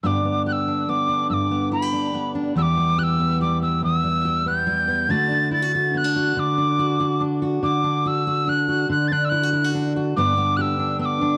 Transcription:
0.03 steel-string acoustic guitar G2 D3 B3 D4 G4, tin whistle D6 E6
0.25 steel-string acoustic guitar B3
0.46 steel-string acoustic guitar G4, tin whistle F#6
0.53 tin whistle E6
0.68 steel-string acoustic guitar D4
0.89 steel-string acoustic guitar B3, tin whistle D6
1.09 steel-string acoustic guitar D4
1.30 steel-string acoustic guitar G2, tin whistle E6
1.34 tin whistle D6
1.51 steel-string acoustic guitar B3
1.72 steel-string acoustic guitar E4, tin whistle B5
1.82 steel-string acoustic guitar G4
1.93 steel-string acoustic guitar D4
2.14 steel-string acoustic guitar B3
2.35 steel-string acoustic guitar D4
2.55 steel-string acoustic guitar E2 E3 G3 B3 G4, tin whistle E6
2.62 tin whistle D6
2.77 steel-string acoustic guitar G3
2.98 steel-string acoustic guitar G4, tin whistle F#6
3.04 tin whistle E6
3.19 steel-string acoustic guitar B3
3.41 steel-string acoustic guitar G3, tin whistle D6
3.63 steel-string acoustic guitar B3, tin whistle E6
3.83 steel-string acoustic guitar E2, tin whistle E6
4.04 steel-string acoustic guitar G3
4.25 steel-string acoustic guitar G4
4.46 steel-string acoustic guitar B3, tin whistle G6
4.67 steel-string acoustic guitar G3
4.88 steel-string acoustic guitar B3
5.09 steel-string acoustic guitar D3 A3 D4 F#4, tin whistle A6
5.31 steel-string acoustic guitar D4
5.51 steel-string acoustic guitar E4, tin whistle A6
5.63 steel-string acoustic guitar F#4
5.75 steel-string acoustic guitar F#4
5.94 steel-string acoustic guitar B3, tin whistle F#6
6.04 steel-string acoustic guitar D4
6.16 steel-string acoustic guitar F#4
6.37 steel-string acoustic guitar D3, tin whistle D6
6.58 steel-string acoustic guitar D4
6.79 steel-string acoustic guitar F#4
7.00 steel-string acoustic guitar F#4
7.21 steel-string acoustic guitar D4
7.42 steel-string acoustic guitar F#4
7.63 steel-string acoustic guitar D3, tin whistle D6
7.84 steel-string acoustic guitar D4
8.06 steel-string acoustic guitar F#4, tin whistle E6
8.27 steel-string acoustic guitar F#4
8.47 steel-string acoustic guitar D4, tin whistle F#6
8.68 steel-string acoustic guitar F#4
8.89 steel-string acoustic guitar D3, tin whistle F#6
9.08 steel-string acoustic guitar D4, tin whistle A6
9.12 tin whistle F#6
9.25 tin whistle E6
9.29 steel-string acoustic guitar E4, tin whistle F#6
9.43 steel-string acoustic guitar F#4
9.53 steel-string acoustic guitar E4
9.64 steel-string acoustic guitar F#4
9.75 steel-string acoustic guitar D4
9.96 steel-string acoustic guitar F#4
10.17 steel-string acoustic guitar G2 D3 B3 D4 G4, tin whistle D6
10.37 steel-string acoustic guitar B3
10.57 steel-string acoustic guitar G4, tin whistle F#6
10.62 tin whistle E6
10.79 steel-string acoustic guitar D4
10.99 steel-string acoustic guitar B3, tin whistle E6
11.05 tin whistle D6
11.21 steel-string acoustic guitar D4

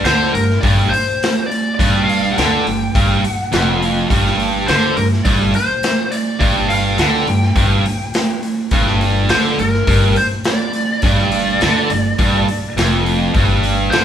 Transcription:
0.04 upright bass D2, distorted electric guitar D3, lead electric guitar C5, snare, open hi-hat
0.33 upright bass G1, distorted electric guitar G2, lead electric guitar A#4, open hi-hat
0.51 snare
0.61 upright bass G1, distorted electric guitar G2, lead electric guitar D5, kick, open hi-hat
0.90 lead electric guitar C5, open hi-hat
1.23 snare, open hi-hat
1.46 lead electric guitar D5
1.51 open hi-hat
1.75 lead electric guitar D5
1.79 upright bass G1, distorted electric guitar G2, kick, open hi-hat
2.05 lead electric guitar F5
2.09 open hi-hat
2.32 lead electric guitar G5
2.38 upright bass D2, distorted electric guitar D3, snare, open hi-hat
2.67 upright bass G1, distorted electric guitar G2, open hi-hat
2.95 upright bass G1, distorted electric guitar G2, kick, open hi-hat
3.24 lead electric guitar F#5, open hi-hat
3.52 upright bass F1, distorted electric guitar F2, snare, open hi-hat
3.82 open hi-hat
4.10 upright bass G1, distorted electric guitar G2, kick, open hi-hat
4.26 snare
4.39 open hi-hat
4.68 upright bass D2, distorted electric guitar D3, lead electric guitar C5, snare, open hi-hat
4.97 upright bass G1, distorted electric guitar G2, lead electric guitar A#4, open hi-hat
5.13 snare
5.25 upright bass G1, distorted electric guitar G2, lead electric guitar D5, kick, open hi-hat
5.54 lead electric guitar C5, open hi-hat
5.83 snare, open hi-hat
6.11 lead electric guitar D5, open hi-hat
6.40 upright bass G1, distorted electric guitar G2, lead electric guitar D5, kick, open hi-hat
6.69 lead electric guitar F5, open hi-hat
6.98 upright bass D2, distorted electric guitar D3, lead electric guitar G5, snare, open hi-hat
7.26 upright bass G1, distorted electric guitar G2, open hi-hat
7.42 snare
7.55 upright bass G1, distorted electric guitar G2, kick, open hi-hat
7.86 open hi-hat
8.14 snare, open hi-hat
8.43 open hi-hat
8.71 upright bass G1, distorted electric guitar G2, kick, open hi-hat
8.87 snare
9.01 open hi-hat
9.29 upright bass D2, distorted electric guitar D3, lead electric guitar C5, snare, open hi-hat
9.57 upright bass G1, distorted electric guitar G2, lead electric guitar A#4, open hi-hat
9.74 snare
9.87 upright bass G1, distorted electric guitar G2, kick, open hi-hat
10.16 lead electric guitar C5, open hi-hat
10.44 lead electric guitar D5, snare, open hi-hat
10.73 open hi-hat
11.02 upright bass G1, distorted electric guitar G2, kick, open hi-hat
11.06 lead electric guitar D5
11.18 snare
11.31 open hi-hat
11.61 upright bass D2, distorted electric guitar D3, snare, open hi-hat
11.90 upright bass G1, distorted electric guitar G2, open hi-hat
12.18 upright bass G1, distorted electric guitar G2, kick, open hi-hat
12.48 open hi-hat
12.76 upright bass F1, distorted electric guitar F2, snare, open hi-hat
13.06 open hi-hat
13.34 upright bass G1, distorted electric guitar G2, kick, open hi-hat
13.63 open hi-hat
13.91 upright bass D2, distorted electric guitar D3, lead electric guitar C5, snare, open hi-hat

